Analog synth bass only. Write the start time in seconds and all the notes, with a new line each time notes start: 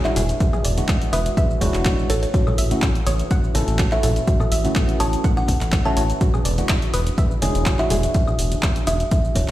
0.16 E1
0.65 E1
1.13 E1
1.61 E1
1.74 E1
2.10 A1
2.58 A1
3.06 A1
3.55 A1
3.68 A1
4.03 A1
4.52 A1
5.00 A1
5.48 A1
5.61 A1
5.97 A1
6.45 E1
6.94 E1
7.42 E1
7.55 E1
7.91 E1
8.39 E1
8.87 E1
9.36 E1